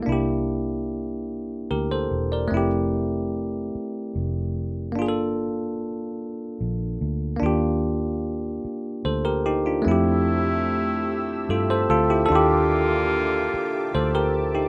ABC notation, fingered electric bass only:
X:1
M:6/8
L:1/8
Q:3/8=49
K:F
V:1 name="Fingered electric bass" clef=bass
C,,4 D,, E,,, | F,,,3 z F,,,2 | G,,,4 B,,, D,, | _E,,3 z D,,2 |
F,,4 G,, D,, | _E,,3 z D,,2 |]